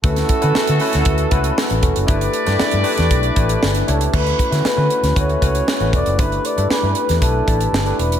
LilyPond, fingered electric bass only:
\new Staff \with { instrumentName = "Fingered electric bass" } { \clef bass \time 4/4 \key d \major \tempo 4 = 117 d,8 r16 d16 r16 d16 r16 d,16 d,8 cis,8 r16 a,,16 e,,16 fis,,16 | g,,8 r16 g,16 r16 g,16 r16 e,16 b,,8 a,,8 g,,8 cis,8 | d,8 r16 d16 r16 d16 r16 d,16 d,8 cis,8 r16 a,,16 e,,16 fis,,16 | g,,8 r16 g,16 r16 g,16 r16 e,16 b,,8 a,,8 g,,8 e,,8 | }